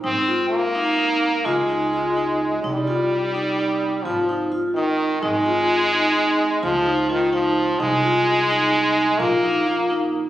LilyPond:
<<
  \new Staff \with { instrumentName = "Vibraphone" } { \time 11/8 \key aes \major \tempo 4 = 128 ees'8 f'4 ees'8 ees'4 f'8 ees'8 f'8 ees'4 | ees'8 f'4 ees'8 ees'4 f'8 ees'8 f'8 ees'4 | ees'8 f'4 ees'8 ees'4 f'8 ees'8 f'8 ees'4 | ees'8 f'4 ees'8 ees'4 f'8 ees'8 f'8 ees'4 | }
  \new Staff \with { instrumentName = "French horn" } { \clef bass \time 11/8 \key aes \major c'4 bes2 aes2~ aes8 | g2. f4 r8 ees4 | aes2. f4 ees8 f4 | aes2. bes2 r8 | }
  \new Staff \with { instrumentName = "Upright bass" } { \clef bass \time 11/8 \key aes \major aes,,2. des,2~ des,8 | c,2. aes,,2~ aes,,8 | aes,,2. des,2~ des,8 | c,2. bes,,2~ bes,,8 | }
>>